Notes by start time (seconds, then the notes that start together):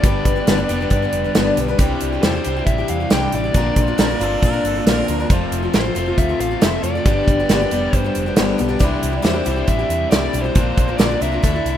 Already playing: D5
0.04 G1 G2 D3 G3 B3 D4 G4 B4, kick, closed hi-hat
0.25 G1, kick, closed hi-hat
0.36 G3 B3 D4 B4
0.47 G1 G2 D3 G3 B3 D4 B4, snare, closed hi-hat
0.58 G3 B3 D4 B4
0.68 F1 G2 D3 G3 B3 D4 G4 B4, closed hi-hat
0.80 G3 B3 D4 B4
0.90 G2, kick, closed hi-hat
1.02 G3 B3 D4 B4
1.13 F1, closed hi-hat
1.24 G3 B3 D4 B4
1.35 G1 G2 D3 G3 B3 D4 B4, snare, closed hi-hat
1.57 B1 G3 B3 D4 B4, closed hi-hat
1.68 G3 B3 D4 B4
1.79 C2 C3 E3 G3 C4 D4 E4 G4, kick, closed hi-hat
2.01 C2, closed hi-hat
2.12 D4 E4 G4
2.22 E2 C3 G3 D4 E4 G4 C5, snare, closed hi-hat
2.34 D4 E4 G4
2.45 C2 C3 E3 G3 C4 D4 E4 G4, closed hi-hat
2.57 D4 E4 G4
2.66 A1 E5, kick, closed hi-hat
2.78 D4 E4 G4
2.88 E2 F5, closed hi-hat
3.00 D4 E4 G4
3.10 C2 C3 G3 D4 E4 G4 G5, snare, closed hi-hat
3.32 A1 G3 D4 E4 G4 D5, closed hi-hat
3.44 D4 E4 G4
3.54 A#1 A#2 D3 F3 A#3 C4 D4 F4 A#4, kick, closed hi-hat
3.76 A#1, kick, closed hi-hat
3.87 F3 C4 D4 A#4
3.98 A#1 A#2 D3 F3 C4 D4 A#4, snare, closed hi-hat
4.10 F3 C4 D4 A#4
4.19 G1 D3 F3 A#3 C4 D4 F4 A#4, closed hi-hat
4.23 A#2 A4
4.43 A#2 A#4, kick, closed hi-hat
4.52 F3 C4 D4 A#4
4.64 G1 A4, closed hi-hat
4.75 F3 C4 D4 A#4
4.86 A#1 A#2 D3 F3 C4 D4 A#4, snare, closed hi-hat
5.08 D2 F3 C4 D4 A#4, closed hi-hat
5.20 F3 C4 D4 A#4
5.30 F1 F2 C3 F3 A3 C4 F4 A4, kick, closed hi-hat
5.52 F1, closed hi-hat
5.62 C4 F4 A4
5.73 A1 F3 C4 F4 A4 C5, snare, closed hi-hat
5.84 C4 F4 A4
5.95 F1 F2 C3 F3 A3 C4 F4 A4, closed hi-hat
6.06 C4 F4 A4
6.18 D2 E5, kick, closed hi-hat
6.29 C4 F4 A4
6.39 A1 F5, closed hi-hat
6.51 C4 F4 A4
6.61 F1 F3 C4 F4 A4 E5, snare, closed hi-hat
6.83 F2 F3 C4 F4 A4 D5, closed hi-hat
6.95 C4 F4 A4
7.05 G1 G2 D3 G3 B3 D4 G4, kick, closed hi-hat
7.27 G1, kick, closed hi-hat
7.40 G3 B3 D4 G4
7.49 G1 G2 D3 G3 B3 D4 G4, snare, closed hi-hat
7.61 G3 B3 D4 G4
7.71 F1 G2 D3 G3 B3 D4 G4, closed hi-hat
7.93 G2 C5, kick, closed hi-hat
8.04 G3 B3 D4 G4
8.15 F1, closed hi-hat
8.26 G3 B3 D4 G4
8.36 G1 G2 D3 G3 B3 D4 G4, snare, closed hi-hat
8.58 B1 G3 B3 D4 G4, closed hi-hat
8.68 G3 B3 D4 G4
8.79 C2 C3 E3 G3 C4 D4 E4 G4, kick, closed hi-hat
8.84 E4
9.03 C2, closed hi-hat
9.12 D4 E4 G4
9.22 E2 C3 G3 D4 E4 G4 C5, snare, closed hi-hat
9.34 D4 E4 G4
9.45 C2 G3 C4 D4 E4 G4, closed hi-hat
9.49 C3 E3
9.56 D4 E4 G4
9.68 A1 E5, kick, closed hi-hat
9.79 D4 E4 G4
9.89 E2, closed hi-hat
10.10 C2 C3 G3 D4 E4 G4 D5, snare, closed hi-hat
10.33 B1 G3 D4 E4 G4, closed hi-hat
10.42 E4 G4 C5
10.46 D4
10.55 A#1 A#2 D3 F3 A#3 C4 D4 F4 A#4, kick, closed hi-hat
10.77 A#1, kick, closed hi-hat
10.88 F3 C4 D4 A#4
10.97 A#1 A#2 D3 F3 C4 D4 A#4 D5, snare, closed hi-hat
11.10 F3 C4 D4 A#4
11.21 C2 A#2 D3 F3 A#3 C4 D4 F4 A#4 E5, closed hi-hat
11.32 F3 C4 D4 A#4
11.43 D2 D3 A3 D4 E4 A4, kick, closed hi-hat
11.54 D4 E4 A4
11.65 C2, closed hi-hat